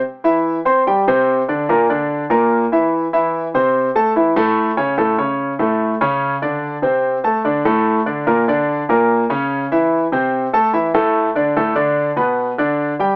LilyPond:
\new Staff \with { instrumentName = "Grand piano" } { \time 4/4 \key a \minor \tempo 4 = 146 r8 <e e' e''>4 <c' c'' c'''>8 <g g' g''>8 <c c' c''>4 <d d' d''>8 | <bes, bes bes'>8 <d d' d''>4 <bes, bes bes'>4 <e e' e''>4 <e e' e''>8~ | <e e' e''>8 <c c' c''>4 <a a' a''>8 <e e' e''>8 <a, a a'>4 <cis cis' cis''>8 | <a, a a'>8 <cis cis' cis''>4 <a, a a'>4 <cis cis' cis''>4 <d d' d''>8~ |
<d d' d''>8 <c c' c''>4 <a a' a''>8 <d d' d''>8 <a, a a'>4 <d d' d''>8 | <bes, bes bes'>8 <d d' d''>4 <bes, bes bes'>4 <cis cis' cis''>4 <e e' e''>8~ | <e e' e''>8 <c c' c''>4 <a a' a''>8 <e e' e''>8 <a, a a'>4 <d d' d''>8 | <a, a a'>8 <d d' d''>4 <b, b b'>4 <d d' d''>4 <g g' g''>8 | }